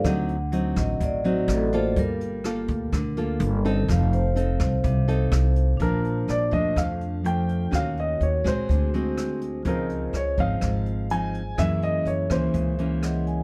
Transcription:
<<
  \new Staff \with { instrumentName = "Grand piano" } { \time 4/4 \key d \phrygian \tempo 4 = 125 r1 | r1 | r1 | bes'4 d''8 ees''8 f''4 g''4 |
f''8 ees''8 des''8 c''2 r8 | bes'4 des''8 f''4. aes''4 | fes''8 ees''8 des''8 c''2 r8 | }
  \new Staff \with { instrumentName = "Vibraphone" } { \time 4/4 \key d \phrygian << { fis''4. ees''8 d''8 fis'8 a'8 c''8 | bes'4. r2 r8 | f''8 c''8 r2. | r1 |
r1 | r1 | r2. ges''8 aes''8 | } \\ { r1 | r1 | r1 | <d' f' c'' a''>2. <d' f' a' c''>4 |
<ges' bes' des''>2 <a fis' gis' c''>2 | <f' aes' c'' ees''>1 | <des' aes' bes' fes''>2. <aes' bes' des'' ees''>4 | } >> }
  \new Staff \with { instrumentName = "Nylon-string guitar" } { \time 4/4 \key d \phrygian << { <fis c' ees'>8 r8 <fis c' ees'>4. <fis c' ees'>4 <bes f' a'>8~ | <bes f' a'>4 <bes f' a'>4 r8 <bes f' a'>4 <c' ees' a'>8~ | <c' ees' a'>4 <c' ees' a'>4. <c' ees' a'>4. | <f d'>4. <f a d'>4. <f a d'>4 |
<bes des' ges'>4. <aes c' ges'>4 <gis c' fis'>4. | <f c' ees'>4 r8 <f c' ees'>4. <f c' ees'>8 r8 | <fes bes des'>4. <fes bes des'>4 <fes bes des'>4. | } \\ { d2 a,2 | g2 d2 | f2 c2 | bes,2 f,2 |
ees2 d2 | des2 aes,2 | ges,2 des2 | } >> }
  \new Staff \with { instrumentName = "Upright bass" } { \clef bass \time 4/4 \key d \phrygian d,4. a,,8 a,,4 a,,4 | g,,4. d,8 d,4 g,,4 | f,,4. c,8 c,4 c,4 | bes,,4 bes,,8 f,8 f,2 |
ees,4 ees,8 bes,,8 d,2 | des,4 des,8 aes,,8 aes,,2 | ges,4 ges,8 des,8 des,2 | }
  \new DrumStaff \with { instrumentName = "Drums" } \drummode { \time 4/4 <hh bd ss>8 hh8 hh8 <hh bd ss>8 <hh bd>8 hh8 <hh ss>8 hh8 | <hh bd>8 hh8 <hh ss>8 <hh bd>8 <hh bd ss>8 hh8 hh8 hh8 | <hh bd ss>8 hh8 hh8 <hh bd ss>8 <hh bd>8 hh8 <hh ss>8 hh8 | <hh bd>8 hh8 <hh ss>8 <hh bd>8 <hh bd ss>8 hh8 hh8 hh8 |
<hh bd ss>8 hh8 hh8 <hh bd ss>8 <hh bd>8 hh8 <hh ss>8 hh8 | <hh bd>8 hh8 <hh ss>8 <hh bd>8 <hh bd ss>8 hh8 hh8 hh8 | <hh bd ss>8 hh8 hh8 <hh bd ss>8 <hh bd>8 hh8 <hh ss>8 hh8 | }
>>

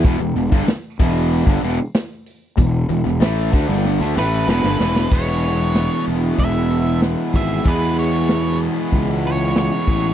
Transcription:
<<
  \new Staff \with { instrumentName = "Lead electric guitar" } { \time 4/4 \key e \major \tempo 4 = 94 r1 | r2 r8 b'8 b'4 | cis''4. r8 e''4 r8 e''8 | b'8 cis''4 r4 cis''8 cis''4 | }
  \new Staff \with { instrumentName = "Distorted electric guitar" } { \clef bass \time 4/4 \key e \major <e, b,>16 <e, b,>16 <e, b,>16 <g, d>16 r8 <e, b, e>8. <g, d>16 <e, b,>16 r4 r16 | <e, b,>8 <e, b,>16 <e, b,>16 <a, e a>8 <d a>16 <g, d g>8 <d a>16 <a, e a>8 <e, b,>16 <g, d>16 <e, b, e>8 | <e gis b e'>1 | <e gis b e'>1 | }
  \new Staff \with { instrumentName = "Distorted electric guitar" } { \clef bass \time 4/4 \key e \major <e, b,>16 <e, b,>16 <e, b,>16 <g, d>16 r8 <e, b, e>8. <g, d>16 <e, b,>16 r4 r16 | <e, b,>8 <e, b,>16 <e, b,>16 <a, e a>8 <d a>16 <g, d g>8 <d a>16 <a, e a>8 <e, b,>16 <g, d>16 <e, b, e>8 | <e, b, e gis b gis'>2.~ <e, b, e gis b gis'>8 <e, b, e gis b gis'>8 | <e, b, e gis b gis'>2.~ <e, b, e gis b gis'>8 <e, b, e gis b gis'>8 | }
  \new Staff \with { instrumentName = "Fingered electric bass" } { \clef bass \time 4/4 \key e \major e,,16 e,,16 e,,16 g,,16 r8 e,,8. g,,16 e,,16 r4 r16 | e,,8 e,,16 e,,16 a,,8 d,16 g,,8 d,16 a,,8 e,,16 g,,16 e,,8 | e,,4. e,,8 e,,4. gis,,8 | e,2 cis,4. a,,8 | }
  \new DrumStaff \with { instrumentName = "Drums" } \drummode { \time 4/4 <hho bd>8 <hho sn>16 bd16 <hho sn>8 <hho bd>8 hho16 bd16 hho8 <hho sn>8 hho8 | <hho bd>8 hho16 sn16 <hho sn>8 <hho bd>8 sn8 sn8 sn16 sn16 sn16 sn16 | <cymc bd>8 hho8 <hho sn>8 <hho sn>8 <hho bd>8 hho8 <hho sn>8 <hho bd>8 | <hho bd>8 hho8 <hho sn>8 hho8 <hho bd>8 hho8 <hho sn>8 <hho bd>8 | }
>>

